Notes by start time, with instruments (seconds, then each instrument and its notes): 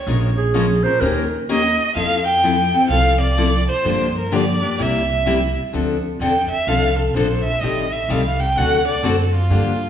Already playing: violin C#5
0.07 upright bass A#1, steel-string acoustic guitar F3 G#3 C#4 F4 A#4
0.37 clarinet G#4
0.54 steel-string acoustic guitar F3 G#3 C#4 F4 A#4
0.83 steel-string acoustic guitar C#4 F4 A#4, clarinet C5
1.00 upright bass D#2, steel-string acoustic guitar D#3 A#3 C#4 G4 A#4, clarinet A#4
1.49 steel-string acoustic guitar D#3 A#3 C#4 G4 A#4, violin D#5
1.95 upright bass F2, steel-string acoustic guitar F3 C4 E4 A4, violin F5
2.25 violin G5
2.44 steel-string acoustic guitar F3 C4 E4 A4
2.74 steel-string acoustic guitar C4 E4 A4
2.89 upright bass C2, steel-string acoustic guitar F3 C4 E4 A4, violin F5
3.21 violin D5
3.38 steel-string acoustic guitar F3 C4 E4 A4
3.69 violin C5
3.84 upright bass G2, steel-string acoustic guitar D3 F3 A#3 D4 G4
4.18 violin A#4
4.32 steel-string acoustic guitar D3 F3 A#3 D4 G4, violin D5
4.61 steel-string acoustic guitar A#3 D4 G4
4.78 upright bass C2, steel-string acoustic guitar C3 G3 A#3 E4 G4, violin E5
5.26 steel-string acoustic guitar C3 G3 A#3 E4 G4
5.73 upright bass D2, steel-string acoustic guitar D3 F3 C4 D4 A4
6.20 upright bass E2, steel-string acoustic guitar D3 F3 C4 D4 A4, violin G5
6.50 violin E5, muted upright bass stroke
6.67 upright bass C2, steel-string acoustic guitar D3 F3 C4 D4 A4, violin F5
6.99 violin A4
7.14 upright bass A#1, steel-string acoustic guitar D3 F3 C4 D4 A4, violin C5
7.43 violin E5
7.61 upright bass A1, steel-string acoustic guitar D#3 G3 C4 G4 A4, violin D#5
7.92 violin E5
8.08 upright bass C2, steel-string acoustic guitar D#3 G3 C4 G4 A4, violin F5
8.40 violin G5
8.56 upright bass D2, steel-string acoustic guitar D3 A3 C4 F#4 A4, violin F#5
8.88 violin D5
9.03 upright bass F#2, steel-string acoustic guitar D3 A3 C4 F#4 A4, violin A4
9.35 violin F4
9.50 upright bass G2, steel-string acoustic guitar D3 F3 A#3 D4 G4